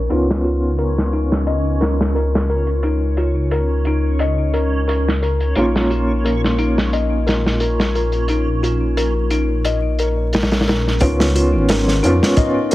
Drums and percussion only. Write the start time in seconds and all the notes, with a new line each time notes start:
0.10 closed hi-hat
0.31 snare
0.44 closed hi-hat
0.78 closed hi-hat
0.98 snare
1.13 closed hi-hat
1.32 snare
1.47 closed hi-hat
1.81 snare, closed hi-hat
2.01 snare
2.16 closed hi-hat
2.35 snare
2.49 closed hi-hat
2.67 closed hi-hat
2.83 closed hi-hat
3.17 closed hi-hat
3.51 closed hi-hat
3.85 closed hi-hat
4.19 closed hi-hat
4.54 closed hi-hat
4.89 closed hi-hat
5.08 snare
5.23 closed hi-hat
5.40 closed hi-hat
5.55 closed hi-hat
5.76 snare
5.91 closed hi-hat
6.26 closed hi-hat
6.44 snare
6.58 closed hi-hat
6.78 snare
6.93 closed hi-hat
7.27 snare, closed hi-hat
7.46 snare
7.60 closed hi-hat
7.80 snare
7.95 closed hi-hat
8.12 closed hi-hat
8.28 closed hi-hat
8.64 closed hi-hat
8.97 closed hi-hat
9.30 closed hi-hat
9.65 closed hi-hat
9.99 closed hi-hat
10.33 snare, closed hi-hat
10.41 snare, closed hi-hat
10.51 snare, closed hi-hat
10.59 snare, closed hi-hat
10.67 snare, closed hi-hat
10.88 snare
11.01 kick, closed hi-hat
11.20 snare
11.36 closed hi-hat
11.69 snare, closed hi-hat
11.88 snare
12.04 closed hi-hat
12.23 snare
12.37 kick, closed hi-hat
12.71 closed hi-hat